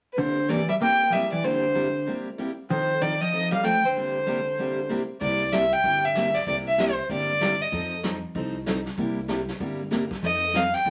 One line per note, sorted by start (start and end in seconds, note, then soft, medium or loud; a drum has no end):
0.13 0.20 B4 medium
0.17 0.38 C3 soft
0.17 0.50 D3 medium
0.17 0.38 G3 soft
0.17 0.38 A#3 medium
0.17 0.38 E4 medium
0.17 0.38 G4 soft
0.17 0.51 C5 medium
0.48 0.60 C3 medium
0.48 0.69 E3 medium
0.48 0.60 G3 medium
0.48 0.60 A#3 medium
0.48 0.61 E4 medium
0.48 0.61 G4 medium
0.48 0.69 D5 medium
0.69 0.74 G3 medium
0.69 0.75 E5 medium
0.81 1.01 C3 medium
0.81 1.01 G3 soft
0.81 1.08 A#3 medium
0.81 1.02 A#3 medium
0.81 1.02 E4 medium
0.81 1.02 G4 medium
0.81 1.12 G5 loud
1.10 1.23 C3 medium
1.10 1.12 F3 soft
1.10 1.32 G3 medium
1.10 1.24 G3 medium
1.10 1.24 A#3 medium
1.10 1.24 E4 medium
1.10 1.24 G4 medium
1.10 1.14 D#5 medium
1.10 1.32 E5 medium
1.32 1.44 E3 medium
1.32 1.46 D5 medium
1.43 1.64 C3 soft
1.43 2.07 D3 medium
1.43 1.64 G3 soft
1.43 1.64 A#3 medium
1.43 1.64 E4 medium
1.43 1.64 G4 medium
1.43 2.07 C5 medium
1.74 1.86 C3 medium
1.74 1.86 G3 medium
1.74 1.86 A#3 medium
1.74 1.87 E4 medium
1.74 1.87 G4 medium
2.06 2.27 C3 medium
2.06 2.27 G3 medium
2.06 2.27 A#3 medium
2.06 2.27 E4 medium
2.06 2.28 G4 medium
2.38 2.49 C3 medium
2.38 2.49 G3 medium
2.38 2.50 A#3 medium
2.38 2.50 E4 medium
2.38 2.50 G4 medium
2.70 2.99 D#3 medium
2.70 2.90 F3 soft
2.70 2.90 C4 medium
2.70 2.91 D#4 medium
2.70 2.91 A4 medium
2.70 3.03 C5 medium
3.01 3.21 D#3 medium
3.01 3.12 F3 medium
3.01 3.12 C4 medium
3.01 3.13 D#4 medium
3.01 3.13 A4 medium
3.01 3.22 D5 medium
3.21 3.52 F3 medium
3.21 3.52 D#5 medium
3.32 3.53 F3 soft
3.32 3.53 C4 medium
3.32 3.53 D#4 medium
3.32 3.53 A4 medium
3.52 3.64 G3 medium
3.52 3.67 F5 medium
3.63 3.75 F3 medium
3.63 3.84 A3 medium
3.63 3.75 C4 medium
3.63 3.75 D#4 medium
3.63 3.75 A4 medium
3.63 3.87 G5 loud
3.84 4.90 D3 medium
3.84 4.91 C5 medium
3.96 4.16 C3 soft
3.96 4.16 G3 medium
3.96 4.16 A#3 medium
3.96 4.17 E4 medium
3.96 4.17 G4 medium
4.26 4.38 C3 medium
4.26 4.38 G3 medium
4.26 4.38 A#3 medium
4.26 4.38 E4 medium
4.26 4.38 G4 medium
4.58 4.79 C3 medium
4.58 4.79 G3 medium
4.58 4.79 A#3 medium
4.58 4.79 E4 medium
4.58 4.80 G4 medium
4.89 5.01 C3 medium
4.89 5.01 G3 medium
4.89 5.01 A#3 medium
4.89 5.01 E4 medium
4.89 5.01 G4 medium
5.21 5.71 C2 loud
5.21 5.41 C3 medium
5.21 5.41 G3 medium
5.21 5.42 A#3 medium
5.21 5.42 E4 medium
5.21 5.42 G4 medium
5.21 5.54 D5 medium
5.21 brush sweep soft
5.21 kick soft
5.52 5.64 C3 medium
5.52 5.64 G3 medium
5.52 5.64 A#3 medium
5.52 5.64 E4 medium
5.52 5.64 G4 medium
5.52 5.74 E5 medium
5.52 snare medium
5.52 hi-hat pedal soft
5.72 6.07 G5 loud
5.83 6.34 G1 medium
5.83 6.04 C3 soft
5.83 6.05 G3 medium
5.83 6.05 A#3 medium
5.83 6.05 E4 medium
5.83 6.05 G4 medium
5.83 brush sweep soft
5.83 kick soft
6.05 6.36 E5 medium
6.15 6.27 C3 medium
6.15 6.27 G3 medium
6.15 6.27 A#3 medium
6.15 6.27 E4 medium
6.15 6.27 G4 medium
6.15 snare medium
6.15 hi-hat pedal medium
6.34 6.47 D5 medium
6.34 snare soft
6.47 6.97 C2 medium
6.47 6.67 C3 medium
6.47 6.68 G3 soft
6.47 6.68 A#3 medium
6.47 6.68 E4 medium
6.47 6.68 G4 medium
6.47 6.56 D5 loud
6.47 brush sweep soft
6.47 kick soft
6.68 6.82 E5 medium
6.78 6.89 C3 medium
6.78 6.90 G3 medium
6.78 6.90 A#3 medium
6.78 6.90 E4 medium
6.78 6.90 G4 medium
6.78 7.11 C5 medium
6.78 snare medium
6.78 hi-hat pedal medium
7.09 7.60 G1 medium
7.09 7.30 C3 medium
7.09 7.30 G3 soft
7.09 7.30 A#3 medium
7.09 7.30 E4 medium
7.09 7.31 G4 medium
7.09 7.63 D5 loud
7.09 brush sweep soft
7.09 kick soft
7.41 7.53 C3 medium
7.41 7.53 G3 medium
7.41 7.53 A#3 medium
7.41 7.53 E4 medium
7.41 7.53 G4 medium
7.41 snare medium
7.41 hi-hat pedal medium
7.62 7.93 D#5 medium
7.72 8.22 F2 medium
7.72 7.92 F3 medium
7.72 7.93 C4 soft
7.72 7.93 D#4 medium
7.72 7.93 A4 medium
7.72 brush sweep soft
7.72 kick soft
8.03 8.15 F3 medium
8.03 8.15 C4 medium
8.03 8.15 D#4 medium
8.03 8.15 A4 medium
8.03 snare medium
8.03 hi-hat pedal medium
8.35 8.85 C2 medium
8.35 8.55 F3 medium
8.35 8.56 C4 medium
8.35 8.56 D#4 medium
8.35 8.56 A4 medium
8.35 brush sweep soft
8.35 kick soft
8.66 8.78 F3 medium
8.66 8.78 C4 medium
8.66 8.78 D#4 medium
8.66 8.78 A4 medium
8.66 snare medium
8.66 hi-hat pedal medium
8.86 snare soft
8.97 9.48 C2 medium
8.97 9.18 C3 soft
8.97 9.18 G3 medium
8.97 9.18 A#3 medium
8.97 9.19 E4 medium
8.97 9.19 G4 medium
8.97 brush sweep medium
8.97 kick soft
9.28 9.40 C3 medium
9.28 9.40 G3 medium
9.28 9.40 A#3 medium
9.28 9.40 E4 medium
9.28 9.40 G4 medium
9.28 snare medium
9.28 hi-hat pedal medium
9.48 snare soft
9.60 10.10 G1 medium
9.60 9.80 C3 medium
9.60 9.81 G3 medium
9.60 9.81 A#3 medium
9.60 9.81 E4 medium
9.60 9.81 G4 medium
9.60 brush sweep medium
9.60 kick soft
9.91 10.02 C3 medium
9.91 10.02 G3 medium
9.91 10.03 A#3 medium
9.91 10.03 E4 medium
9.91 10.03 G4 medium
9.91 snare medium
9.91 hi-hat pedal soft
10.11 kick medium
10.11 snare soft
10.22 10.73 F2 medium
10.22 10.43 F3 medium
10.22 10.43 C4 soft
10.22 10.43 D#4 medium
10.22 10.43 A4 medium
10.22 10.58 D#5 loud
10.22 brush sweep medium
10.22 kick soft
10.53 10.65 F3 medium
10.53 10.65 C4 medium
10.53 10.65 D#4 medium
10.53 10.65 A4 medium
10.53 10.76 F5 medium
10.53 snare medium
10.53 hi-hat pedal medium
10.73 10.90 G5 medium
10.73 snare soft
10.85 10.90 C2 medium
10.85 10.90 F3 medium
10.85 10.90 C4 medium
10.85 10.90 D#4 medium
10.85 10.90 A4 medium
10.85 brush sweep soft
10.85 kick soft